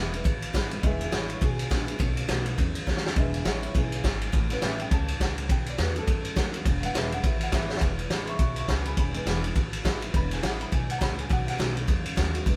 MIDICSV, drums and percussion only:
0, 0, Header, 1, 2, 480
1, 0, Start_track
1, 0, Key_signature, 4, "major"
1, 0, Tempo, 290698
1, 1379, Time_signature, 4, 2, 24, 8
1, 20744, End_track
2, 0, Start_track
2, 0, Title_t, "Drums"
2, 222, Note_on_c, 9, 51, 61
2, 388, Note_off_c, 9, 51, 0
2, 415, Note_on_c, 9, 36, 113
2, 415, Note_on_c, 9, 51, 89
2, 580, Note_off_c, 9, 36, 0
2, 580, Note_off_c, 9, 51, 0
2, 697, Note_on_c, 9, 51, 68
2, 862, Note_off_c, 9, 51, 0
2, 896, Note_on_c, 9, 36, 84
2, 899, Note_on_c, 9, 38, 115
2, 899, Note_on_c, 9, 51, 87
2, 1061, Note_off_c, 9, 36, 0
2, 1064, Note_off_c, 9, 38, 0
2, 1064, Note_off_c, 9, 51, 0
2, 1177, Note_on_c, 9, 51, 66
2, 1342, Note_off_c, 9, 51, 0
2, 1374, Note_on_c, 9, 51, 80
2, 1375, Note_on_c, 9, 36, 121
2, 1539, Note_off_c, 9, 51, 0
2, 1541, Note_off_c, 9, 36, 0
2, 1663, Note_on_c, 9, 51, 65
2, 1828, Note_off_c, 9, 51, 0
2, 1852, Note_on_c, 9, 38, 112
2, 1852, Note_on_c, 9, 51, 77
2, 2018, Note_off_c, 9, 38, 0
2, 2018, Note_off_c, 9, 51, 0
2, 2139, Note_on_c, 9, 51, 60
2, 2304, Note_off_c, 9, 51, 0
2, 2339, Note_on_c, 9, 36, 114
2, 2339, Note_on_c, 9, 51, 87
2, 2504, Note_off_c, 9, 36, 0
2, 2505, Note_off_c, 9, 51, 0
2, 2627, Note_on_c, 9, 51, 71
2, 2792, Note_off_c, 9, 51, 0
2, 2822, Note_on_c, 9, 36, 83
2, 2823, Note_on_c, 9, 38, 121
2, 2823, Note_on_c, 9, 51, 91
2, 2987, Note_off_c, 9, 36, 0
2, 2988, Note_off_c, 9, 38, 0
2, 2988, Note_off_c, 9, 51, 0
2, 3104, Note_on_c, 9, 51, 71
2, 3269, Note_off_c, 9, 51, 0
2, 3300, Note_on_c, 9, 36, 117
2, 3300, Note_on_c, 9, 51, 94
2, 3465, Note_off_c, 9, 51, 0
2, 3466, Note_off_c, 9, 36, 0
2, 3582, Note_on_c, 9, 51, 67
2, 3747, Note_off_c, 9, 51, 0
2, 3774, Note_on_c, 9, 38, 105
2, 3774, Note_on_c, 9, 51, 90
2, 3939, Note_off_c, 9, 38, 0
2, 3939, Note_off_c, 9, 51, 0
2, 4056, Note_on_c, 9, 51, 65
2, 4221, Note_off_c, 9, 51, 0
2, 4261, Note_on_c, 9, 36, 113
2, 4263, Note_on_c, 9, 51, 94
2, 4426, Note_off_c, 9, 36, 0
2, 4428, Note_off_c, 9, 51, 0
2, 4542, Note_on_c, 9, 51, 71
2, 4707, Note_off_c, 9, 51, 0
2, 4741, Note_on_c, 9, 38, 70
2, 4742, Note_on_c, 9, 36, 79
2, 4902, Note_off_c, 9, 38, 0
2, 4902, Note_on_c, 9, 38, 77
2, 4907, Note_off_c, 9, 36, 0
2, 5058, Note_off_c, 9, 38, 0
2, 5058, Note_on_c, 9, 38, 118
2, 5222, Note_on_c, 9, 51, 86
2, 5223, Note_off_c, 9, 38, 0
2, 5224, Note_on_c, 9, 36, 121
2, 5387, Note_off_c, 9, 51, 0
2, 5389, Note_off_c, 9, 36, 0
2, 5512, Note_on_c, 9, 51, 64
2, 5677, Note_off_c, 9, 51, 0
2, 5700, Note_on_c, 9, 38, 112
2, 5700, Note_on_c, 9, 51, 80
2, 5866, Note_off_c, 9, 38, 0
2, 5866, Note_off_c, 9, 51, 0
2, 5993, Note_on_c, 9, 51, 58
2, 6158, Note_off_c, 9, 51, 0
2, 6190, Note_on_c, 9, 36, 109
2, 6193, Note_on_c, 9, 51, 86
2, 6355, Note_off_c, 9, 36, 0
2, 6358, Note_off_c, 9, 51, 0
2, 6474, Note_on_c, 9, 51, 67
2, 6639, Note_off_c, 9, 51, 0
2, 6672, Note_on_c, 9, 36, 80
2, 6676, Note_on_c, 9, 38, 111
2, 6676, Note_on_c, 9, 51, 84
2, 6837, Note_off_c, 9, 36, 0
2, 6841, Note_off_c, 9, 38, 0
2, 6841, Note_off_c, 9, 51, 0
2, 6959, Note_on_c, 9, 51, 70
2, 7125, Note_off_c, 9, 51, 0
2, 7152, Note_on_c, 9, 51, 95
2, 7153, Note_on_c, 9, 36, 119
2, 7317, Note_off_c, 9, 51, 0
2, 7318, Note_off_c, 9, 36, 0
2, 7431, Note_on_c, 9, 38, 34
2, 7431, Note_on_c, 9, 51, 66
2, 7596, Note_off_c, 9, 38, 0
2, 7596, Note_off_c, 9, 51, 0
2, 7627, Note_on_c, 9, 38, 112
2, 7627, Note_on_c, 9, 51, 88
2, 7792, Note_off_c, 9, 38, 0
2, 7792, Note_off_c, 9, 51, 0
2, 7917, Note_on_c, 9, 51, 65
2, 8083, Note_off_c, 9, 51, 0
2, 8110, Note_on_c, 9, 51, 91
2, 8112, Note_on_c, 9, 36, 117
2, 8275, Note_off_c, 9, 51, 0
2, 8277, Note_off_c, 9, 36, 0
2, 8393, Note_on_c, 9, 51, 72
2, 8558, Note_off_c, 9, 51, 0
2, 8592, Note_on_c, 9, 36, 84
2, 8597, Note_on_c, 9, 38, 116
2, 8597, Note_on_c, 9, 51, 90
2, 8757, Note_off_c, 9, 36, 0
2, 8763, Note_off_c, 9, 38, 0
2, 8763, Note_off_c, 9, 51, 0
2, 8879, Note_on_c, 9, 51, 73
2, 9044, Note_off_c, 9, 51, 0
2, 9072, Note_on_c, 9, 36, 126
2, 9072, Note_on_c, 9, 51, 90
2, 9237, Note_off_c, 9, 36, 0
2, 9237, Note_off_c, 9, 51, 0
2, 9351, Note_on_c, 9, 51, 63
2, 9516, Note_off_c, 9, 51, 0
2, 9548, Note_on_c, 9, 38, 109
2, 9548, Note_on_c, 9, 51, 83
2, 9713, Note_off_c, 9, 38, 0
2, 9713, Note_off_c, 9, 51, 0
2, 9837, Note_on_c, 9, 51, 57
2, 10002, Note_off_c, 9, 51, 0
2, 10031, Note_on_c, 9, 36, 113
2, 10032, Note_on_c, 9, 51, 86
2, 10196, Note_off_c, 9, 36, 0
2, 10197, Note_off_c, 9, 51, 0
2, 10315, Note_on_c, 9, 51, 64
2, 10480, Note_off_c, 9, 51, 0
2, 10509, Note_on_c, 9, 38, 120
2, 10509, Note_on_c, 9, 51, 84
2, 10510, Note_on_c, 9, 36, 84
2, 10674, Note_off_c, 9, 38, 0
2, 10674, Note_off_c, 9, 51, 0
2, 10675, Note_off_c, 9, 36, 0
2, 10794, Note_on_c, 9, 51, 70
2, 10959, Note_off_c, 9, 51, 0
2, 10987, Note_on_c, 9, 51, 93
2, 10989, Note_on_c, 9, 36, 127
2, 11152, Note_off_c, 9, 51, 0
2, 11154, Note_off_c, 9, 36, 0
2, 11277, Note_on_c, 9, 51, 69
2, 11442, Note_off_c, 9, 51, 0
2, 11476, Note_on_c, 9, 38, 117
2, 11476, Note_on_c, 9, 51, 90
2, 11641, Note_off_c, 9, 38, 0
2, 11641, Note_off_c, 9, 51, 0
2, 11760, Note_on_c, 9, 51, 67
2, 11925, Note_off_c, 9, 51, 0
2, 11947, Note_on_c, 9, 51, 94
2, 11948, Note_on_c, 9, 36, 120
2, 12112, Note_off_c, 9, 51, 0
2, 12113, Note_off_c, 9, 36, 0
2, 12228, Note_on_c, 9, 51, 70
2, 12394, Note_off_c, 9, 51, 0
2, 12419, Note_on_c, 9, 38, 118
2, 12419, Note_on_c, 9, 51, 98
2, 12423, Note_on_c, 9, 36, 90
2, 12584, Note_off_c, 9, 38, 0
2, 12584, Note_off_c, 9, 51, 0
2, 12588, Note_off_c, 9, 36, 0
2, 12702, Note_on_c, 9, 38, 69
2, 12831, Note_off_c, 9, 38, 0
2, 12831, Note_on_c, 9, 38, 96
2, 12896, Note_on_c, 9, 51, 88
2, 12901, Note_on_c, 9, 36, 117
2, 12996, Note_off_c, 9, 38, 0
2, 13061, Note_off_c, 9, 51, 0
2, 13066, Note_off_c, 9, 36, 0
2, 13188, Note_on_c, 9, 51, 62
2, 13353, Note_off_c, 9, 51, 0
2, 13381, Note_on_c, 9, 38, 114
2, 13381, Note_on_c, 9, 51, 79
2, 13546, Note_off_c, 9, 38, 0
2, 13546, Note_off_c, 9, 51, 0
2, 13659, Note_on_c, 9, 51, 59
2, 13824, Note_off_c, 9, 51, 0
2, 13850, Note_on_c, 9, 51, 85
2, 13857, Note_on_c, 9, 36, 114
2, 14015, Note_off_c, 9, 51, 0
2, 14022, Note_off_c, 9, 36, 0
2, 14134, Note_on_c, 9, 51, 64
2, 14300, Note_off_c, 9, 51, 0
2, 14337, Note_on_c, 9, 36, 81
2, 14339, Note_on_c, 9, 38, 118
2, 14339, Note_on_c, 9, 51, 86
2, 14502, Note_off_c, 9, 36, 0
2, 14504, Note_off_c, 9, 38, 0
2, 14504, Note_off_c, 9, 51, 0
2, 14620, Note_on_c, 9, 51, 70
2, 14785, Note_off_c, 9, 51, 0
2, 14810, Note_on_c, 9, 51, 93
2, 14814, Note_on_c, 9, 36, 119
2, 14975, Note_off_c, 9, 51, 0
2, 14979, Note_off_c, 9, 36, 0
2, 15097, Note_on_c, 9, 51, 64
2, 15262, Note_off_c, 9, 51, 0
2, 15300, Note_on_c, 9, 38, 108
2, 15300, Note_on_c, 9, 51, 88
2, 15465, Note_off_c, 9, 38, 0
2, 15465, Note_off_c, 9, 51, 0
2, 15586, Note_on_c, 9, 51, 65
2, 15751, Note_off_c, 9, 51, 0
2, 15779, Note_on_c, 9, 51, 87
2, 15780, Note_on_c, 9, 36, 120
2, 15944, Note_off_c, 9, 51, 0
2, 15945, Note_off_c, 9, 36, 0
2, 16065, Note_on_c, 9, 51, 71
2, 16230, Note_off_c, 9, 51, 0
2, 16262, Note_on_c, 9, 36, 79
2, 16265, Note_on_c, 9, 38, 114
2, 16265, Note_on_c, 9, 51, 89
2, 16427, Note_off_c, 9, 36, 0
2, 16430, Note_off_c, 9, 38, 0
2, 16430, Note_off_c, 9, 51, 0
2, 16547, Note_on_c, 9, 51, 75
2, 16712, Note_off_c, 9, 51, 0
2, 16741, Note_on_c, 9, 51, 91
2, 16743, Note_on_c, 9, 36, 120
2, 16906, Note_off_c, 9, 51, 0
2, 16909, Note_off_c, 9, 36, 0
2, 17026, Note_on_c, 9, 38, 32
2, 17026, Note_on_c, 9, 51, 64
2, 17191, Note_off_c, 9, 38, 0
2, 17191, Note_off_c, 9, 51, 0
2, 17224, Note_on_c, 9, 38, 112
2, 17224, Note_on_c, 9, 51, 89
2, 17389, Note_off_c, 9, 38, 0
2, 17389, Note_off_c, 9, 51, 0
2, 17514, Note_on_c, 9, 51, 57
2, 17680, Note_off_c, 9, 51, 0
2, 17704, Note_on_c, 9, 51, 85
2, 17706, Note_on_c, 9, 36, 115
2, 17870, Note_off_c, 9, 51, 0
2, 17871, Note_off_c, 9, 36, 0
2, 17992, Note_on_c, 9, 51, 67
2, 18157, Note_off_c, 9, 51, 0
2, 18185, Note_on_c, 9, 36, 82
2, 18187, Note_on_c, 9, 38, 118
2, 18187, Note_on_c, 9, 51, 88
2, 18350, Note_off_c, 9, 36, 0
2, 18352, Note_off_c, 9, 38, 0
2, 18352, Note_off_c, 9, 51, 0
2, 18470, Note_on_c, 9, 51, 66
2, 18635, Note_off_c, 9, 51, 0
2, 18664, Note_on_c, 9, 36, 122
2, 18665, Note_on_c, 9, 51, 85
2, 18829, Note_off_c, 9, 36, 0
2, 18830, Note_off_c, 9, 51, 0
2, 18955, Note_on_c, 9, 38, 33
2, 18955, Note_on_c, 9, 51, 64
2, 19120, Note_off_c, 9, 38, 0
2, 19120, Note_off_c, 9, 51, 0
2, 19148, Note_on_c, 9, 38, 112
2, 19148, Note_on_c, 9, 51, 89
2, 19313, Note_off_c, 9, 38, 0
2, 19313, Note_off_c, 9, 51, 0
2, 19432, Note_on_c, 9, 51, 61
2, 19597, Note_off_c, 9, 51, 0
2, 19618, Note_on_c, 9, 51, 87
2, 19619, Note_on_c, 9, 36, 116
2, 19783, Note_off_c, 9, 51, 0
2, 19784, Note_off_c, 9, 36, 0
2, 19906, Note_on_c, 9, 51, 74
2, 20071, Note_off_c, 9, 51, 0
2, 20097, Note_on_c, 9, 36, 83
2, 20097, Note_on_c, 9, 38, 115
2, 20097, Note_on_c, 9, 51, 95
2, 20262, Note_off_c, 9, 36, 0
2, 20262, Note_off_c, 9, 38, 0
2, 20262, Note_off_c, 9, 51, 0
2, 20387, Note_on_c, 9, 51, 72
2, 20552, Note_off_c, 9, 51, 0
2, 20579, Note_on_c, 9, 36, 121
2, 20585, Note_on_c, 9, 51, 94
2, 20744, Note_off_c, 9, 36, 0
2, 20744, Note_off_c, 9, 51, 0
2, 20744, End_track
0, 0, End_of_file